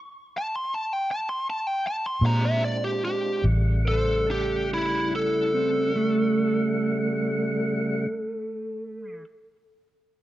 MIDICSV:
0, 0, Header, 1, 5, 480
1, 0, Start_track
1, 0, Tempo, 722892
1, 714, Tempo, 768246
1, 1674, Tempo, 835655
1, 2145, Time_signature, 12, 3, 24, 8
1, 6048, End_track
2, 0, Start_track
2, 0, Title_t, "Lead electric guitar"
2, 0, Program_c, 0, 29
2, 250, Note_on_c, 0, 81, 91
2, 357, Note_off_c, 0, 81, 0
2, 370, Note_on_c, 0, 84, 97
2, 477, Note_off_c, 0, 84, 0
2, 494, Note_on_c, 0, 81, 89
2, 617, Note_off_c, 0, 81, 0
2, 617, Note_on_c, 0, 79, 85
2, 723, Note_off_c, 0, 79, 0
2, 737, Note_on_c, 0, 81, 97
2, 839, Note_off_c, 0, 81, 0
2, 849, Note_on_c, 0, 84, 83
2, 954, Note_off_c, 0, 84, 0
2, 979, Note_on_c, 0, 81, 90
2, 1085, Note_off_c, 0, 81, 0
2, 1085, Note_on_c, 0, 79, 84
2, 1192, Note_off_c, 0, 79, 0
2, 1212, Note_on_c, 0, 81, 93
2, 1316, Note_off_c, 0, 81, 0
2, 1331, Note_on_c, 0, 84, 82
2, 1437, Note_off_c, 0, 84, 0
2, 1452, Note_on_c, 0, 67, 78
2, 1454, Note_on_c, 0, 82, 82
2, 1560, Note_off_c, 0, 67, 0
2, 1574, Note_on_c, 0, 76, 78
2, 1679, Note_off_c, 0, 82, 0
2, 1682, Note_off_c, 0, 76, 0
2, 1693, Note_on_c, 0, 74, 64
2, 1796, Note_off_c, 0, 74, 0
2, 1806, Note_on_c, 0, 67, 73
2, 1912, Note_off_c, 0, 67, 0
2, 1925, Note_on_c, 0, 67, 76
2, 2147, Note_off_c, 0, 67, 0
2, 2401, Note_on_c, 0, 69, 80
2, 2628, Note_off_c, 0, 69, 0
2, 2650, Note_on_c, 0, 67, 78
2, 2872, Note_off_c, 0, 67, 0
2, 2895, Note_on_c, 0, 64, 90
2, 3116, Note_off_c, 0, 64, 0
2, 3135, Note_on_c, 0, 69, 82
2, 5484, Note_off_c, 0, 69, 0
2, 6048, End_track
3, 0, Start_track
3, 0, Title_t, "Electric slide guitar"
3, 0, Program_c, 1, 29
3, 2386, Note_on_c, 1, 72, 89
3, 2620, Note_off_c, 1, 72, 0
3, 2626, Note_on_c, 1, 69, 80
3, 2860, Note_off_c, 1, 69, 0
3, 2872, Note_on_c, 1, 67, 76
3, 3103, Note_off_c, 1, 67, 0
3, 3111, Note_on_c, 1, 64, 78
3, 3343, Note_off_c, 1, 64, 0
3, 3358, Note_on_c, 1, 60, 77
3, 3588, Note_off_c, 1, 60, 0
3, 3596, Note_on_c, 1, 57, 83
3, 5473, Note_off_c, 1, 57, 0
3, 6048, End_track
4, 0, Start_track
4, 0, Title_t, "Tonewheel organ"
4, 0, Program_c, 2, 16
4, 1425, Note_on_c, 2, 65, 70
4, 1426, Note_on_c, 2, 62, 61
4, 1427, Note_on_c, 2, 56, 69
4, 1429, Note_on_c, 2, 60, 65
4, 2137, Note_off_c, 2, 62, 0
4, 2137, Note_off_c, 2, 65, 0
4, 2138, Note_off_c, 2, 56, 0
4, 2139, Note_off_c, 2, 60, 0
4, 2144, Note_on_c, 2, 55, 59
4, 2147, Note_on_c, 2, 78, 57
4, 2150, Note_on_c, 2, 49, 62
4, 2150, Note_on_c, 2, 57, 61
4, 4803, Note_off_c, 2, 55, 0
4, 4806, Note_off_c, 2, 78, 0
4, 4809, Note_off_c, 2, 49, 0
4, 4810, Note_off_c, 2, 57, 0
4, 6048, End_track
5, 0, Start_track
5, 0, Title_t, "Fingered electric bass"
5, 0, Program_c, 3, 33
5, 1425, Note_on_c, 3, 46, 80
5, 2123, Note_off_c, 3, 46, 0
5, 2148, Note_on_c, 3, 33, 82
5, 4808, Note_off_c, 3, 33, 0
5, 6048, End_track
0, 0, End_of_file